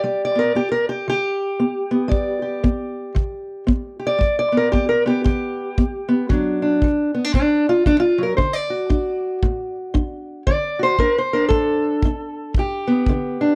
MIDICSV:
0, 0, Header, 1, 3, 480
1, 0, Start_track
1, 0, Key_signature, 1, "major"
1, 0, Tempo, 521739
1, 28, Time_signature, 4, 2, 24, 8
1, 12467, End_track
2, 0, Start_track
2, 0, Title_t, "Steel-string acoustic guitar"
2, 0, Program_c, 0, 25
2, 0, Note_on_c, 0, 67, 44
2, 33, Note_on_c, 0, 55, 74
2, 40, Note_on_c, 0, 74, 49
2, 225, Note_off_c, 0, 74, 0
2, 229, Note_on_c, 0, 74, 83
2, 326, Note_on_c, 0, 59, 47
2, 354, Note_off_c, 0, 67, 0
2, 358, Note_on_c, 0, 70, 83
2, 472, Note_off_c, 0, 55, 0
2, 505, Note_off_c, 0, 59, 0
2, 508, Note_on_c, 0, 59, 61
2, 513, Note_off_c, 0, 70, 0
2, 518, Note_on_c, 0, 67, 86
2, 655, Note_off_c, 0, 67, 0
2, 659, Note_on_c, 0, 70, 86
2, 815, Note_off_c, 0, 70, 0
2, 819, Note_on_c, 0, 67, 83
2, 848, Note_off_c, 0, 74, 0
2, 950, Note_off_c, 0, 59, 0
2, 983, Note_off_c, 0, 67, 0
2, 990, Note_on_c, 0, 50, 68
2, 1008, Note_on_c, 0, 67, 106
2, 1431, Note_off_c, 0, 50, 0
2, 1468, Note_on_c, 0, 59, 63
2, 1746, Note_off_c, 0, 59, 0
2, 1757, Note_on_c, 0, 59, 51
2, 1914, Note_on_c, 0, 55, 77
2, 1923, Note_on_c, 0, 74, 54
2, 2216, Note_off_c, 0, 67, 0
2, 2227, Note_on_c, 0, 67, 49
2, 2373, Note_off_c, 0, 55, 0
2, 2420, Note_off_c, 0, 59, 0
2, 2424, Note_on_c, 0, 59, 65
2, 2868, Note_off_c, 0, 59, 0
2, 2894, Note_on_c, 0, 50, 65
2, 3344, Note_off_c, 0, 50, 0
2, 3374, Note_on_c, 0, 59, 60
2, 3665, Note_off_c, 0, 67, 0
2, 3676, Note_on_c, 0, 67, 49
2, 3737, Note_off_c, 0, 74, 0
2, 3741, Note_on_c, 0, 74, 96
2, 3824, Note_off_c, 0, 59, 0
2, 3846, Note_off_c, 0, 67, 0
2, 3850, Note_on_c, 0, 55, 79
2, 4027, Note_off_c, 0, 74, 0
2, 4038, Note_on_c, 0, 74, 84
2, 4160, Note_on_c, 0, 59, 48
2, 4207, Note_on_c, 0, 70, 88
2, 4302, Note_off_c, 0, 55, 0
2, 4337, Note_off_c, 0, 70, 0
2, 4341, Note_on_c, 0, 67, 91
2, 4352, Note_off_c, 0, 59, 0
2, 4367, Note_on_c, 0, 59, 62
2, 4494, Note_off_c, 0, 67, 0
2, 4497, Note_on_c, 0, 70, 81
2, 4642, Note_off_c, 0, 59, 0
2, 4653, Note_on_c, 0, 59, 51
2, 4664, Note_off_c, 0, 70, 0
2, 4668, Note_on_c, 0, 67, 86
2, 4675, Note_off_c, 0, 74, 0
2, 4813, Note_off_c, 0, 67, 0
2, 4824, Note_on_c, 0, 67, 86
2, 4847, Note_on_c, 0, 50, 61
2, 5281, Note_off_c, 0, 50, 0
2, 5310, Note_off_c, 0, 59, 0
2, 5321, Note_on_c, 0, 59, 65
2, 5588, Note_off_c, 0, 59, 0
2, 5599, Note_on_c, 0, 59, 48
2, 5768, Note_off_c, 0, 59, 0
2, 5788, Note_off_c, 0, 67, 0
2, 5789, Note_on_c, 0, 50, 75
2, 5794, Note_on_c, 0, 54, 53
2, 5808, Note_on_c, 0, 62, 50
2, 6089, Note_off_c, 0, 62, 0
2, 6093, Note_on_c, 0, 62, 50
2, 6233, Note_off_c, 0, 50, 0
2, 6288, Note_off_c, 0, 54, 0
2, 6291, Note_on_c, 0, 54, 65
2, 6570, Note_off_c, 0, 62, 0
2, 6573, Note_on_c, 0, 59, 50
2, 6665, Note_off_c, 0, 59, 0
2, 6665, Note_on_c, 0, 62, 40
2, 6723, Note_off_c, 0, 54, 0
2, 6748, Note_off_c, 0, 62, 0
2, 6756, Note_on_c, 0, 45, 67
2, 6761, Note_on_c, 0, 62, 97
2, 7072, Note_off_c, 0, 62, 0
2, 7076, Note_on_c, 0, 65, 86
2, 7197, Note_off_c, 0, 45, 0
2, 7233, Note_on_c, 0, 54, 64
2, 7234, Note_off_c, 0, 65, 0
2, 7238, Note_on_c, 0, 62, 99
2, 7354, Note_off_c, 0, 62, 0
2, 7358, Note_on_c, 0, 65, 92
2, 7516, Note_off_c, 0, 54, 0
2, 7527, Note_on_c, 0, 54, 47
2, 7535, Note_off_c, 0, 65, 0
2, 7570, Note_on_c, 0, 70, 69
2, 7694, Note_off_c, 0, 70, 0
2, 7698, Note_on_c, 0, 72, 73
2, 7704, Note_off_c, 0, 54, 0
2, 7708, Note_on_c, 0, 50, 77
2, 7850, Note_off_c, 0, 72, 0
2, 7850, Note_on_c, 0, 74, 91
2, 8005, Note_on_c, 0, 66, 49
2, 8152, Note_off_c, 0, 50, 0
2, 8184, Note_on_c, 0, 62, 65
2, 8629, Note_off_c, 0, 62, 0
2, 8677, Note_on_c, 0, 45, 66
2, 9116, Note_off_c, 0, 45, 0
2, 9144, Note_on_c, 0, 62, 69
2, 9589, Note_off_c, 0, 62, 0
2, 9610, Note_off_c, 0, 66, 0
2, 9620, Note_off_c, 0, 74, 0
2, 9630, Note_on_c, 0, 74, 99
2, 9640, Note_on_c, 0, 50, 79
2, 9929, Note_on_c, 0, 66, 51
2, 9950, Note_off_c, 0, 74, 0
2, 9963, Note_on_c, 0, 72, 98
2, 10077, Note_off_c, 0, 50, 0
2, 10112, Note_off_c, 0, 66, 0
2, 10116, Note_on_c, 0, 70, 87
2, 10120, Note_on_c, 0, 62, 66
2, 10273, Note_off_c, 0, 70, 0
2, 10276, Note_off_c, 0, 72, 0
2, 10289, Note_on_c, 0, 72, 86
2, 10403, Note_off_c, 0, 62, 0
2, 10425, Note_on_c, 0, 70, 86
2, 10436, Note_on_c, 0, 62, 50
2, 10563, Note_off_c, 0, 70, 0
2, 10566, Note_on_c, 0, 69, 91
2, 10581, Note_on_c, 0, 45, 64
2, 10919, Note_off_c, 0, 72, 0
2, 11027, Note_off_c, 0, 45, 0
2, 11085, Note_off_c, 0, 62, 0
2, 11088, Note_on_c, 0, 62, 69
2, 11521, Note_off_c, 0, 62, 0
2, 11538, Note_off_c, 0, 69, 0
2, 11570, Note_on_c, 0, 43, 73
2, 11583, Note_on_c, 0, 67, 65
2, 11845, Note_on_c, 0, 59, 56
2, 12001, Note_off_c, 0, 43, 0
2, 12046, Note_on_c, 0, 50, 69
2, 12337, Note_on_c, 0, 62, 61
2, 12467, Note_off_c, 0, 50, 0
2, 12467, Note_off_c, 0, 59, 0
2, 12467, Note_off_c, 0, 62, 0
2, 12467, Note_off_c, 0, 67, 0
2, 12467, End_track
3, 0, Start_track
3, 0, Title_t, "Drums"
3, 1946, Note_on_c, 9, 36, 63
3, 2038, Note_off_c, 9, 36, 0
3, 2429, Note_on_c, 9, 36, 60
3, 2521, Note_off_c, 9, 36, 0
3, 2908, Note_on_c, 9, 36, 68
3, 3000, Note_off_c, 9, 36, 0
3, 3390, Note_on_c, 9, 36, 65
3, 3482, Note_off_c, 9, 36, 0
3, 3872, Note_on_c, 9, 36, 64
3, 3964, Note_off_c, 9, 36, 0
3, 4355, Note_on_c, 9, 36, 59
3, 4447, Note_off_c, 9, 36, 0
3, 4836, Note_on_c, 9, 36, 71
3, 4928, Note_off_c, 9, 36, 0
3, 5316, Note_on_c, 9, 36, 66
3, 5408, Note_off_c, 9, 36, 0
3, 5795, Note_on_c, 9, 36, 65
3, 5887, Note_off_c, 9, 36, 0
3, 6273, Note_on_c, 9, 36, 65
3, 6365, Note_off_c, 9, 36, 0
3, 6752, Note_on_c, 9, 36, 67
3, 6844, Note_off_c, 9, 36, 0
3, 7230, Note_on_c, 9, 36, 68
3, 7322, Note_off_c, 9, 36, 0
3, 7711, Note_on_c, 9, 36, 64
3, 7803, Note_off_c, 9, 36, 0
3, 8190, Note_on_c, 9, 36, 64
3, 8282, Note_off_c, 9, 36, 0
3, 8672, Note_on_c, 9, 36, 66
3, 8764, Note_off_c, 9, 36, 0
3, 9152, Note_on_c, 9, 36, 62
3, 9244, Note_off_c, 9, 36, 0
3, 9631, Note_on_c, 9, 36, 70
3, 9723, Note_off_c, 9, 36, 0
3, 10107, Note_on_c, 9, 36, 62
3, 10199, Note_off_c, 9, 36, 0
3, 10583, Note_on_c, 9, 36, 72
3, 10675, Note_off_c, 9, 36, 0
3, 11063, Note_on_c, 9, 36, 67
3, 11155, Note_off_c, 9, 36, 0
3, 11541, Note_on_c, 9, 36, 67
3, 11633, Note_off_c, 9, 36, 0
3, 12019, Note_on_c, 9, 36, 64
3, 12111, Note_off_c, 9, 36, 0
3, 12467, End_track
0, 0, End_of_file